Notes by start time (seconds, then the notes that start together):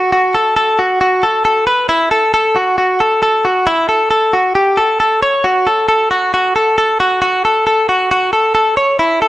Already playing: F#4
0.12 F#4
0.34 A4
0.56 A4
0.79 F#4
1.01 F#4
1.23 A4
1.45 A4
1.67 B4
1.89 E4
2.11 A4
2.34 A4
2.56 F#4
2.78 F#4
3.00 A4
3.23 A4
3.45 F#4
3.67 E4
3.89 A4
4.11 A4
4.33 F#4
4.55 G4
4.77 A4
5.00 A4
5.22 C#5
5.44 F#4
5.67 A4
5.88 A4
6.11 F#4
6.34 F#4
6.56 A4
6.78 A4
7.00 F#4
7.22 F#4
7.45 A4
7.67 A4
7.89 F#4
8.11 F#4
8.33 A4
8.55 A4
8.77 C#5
8.99 E4
9.22 A4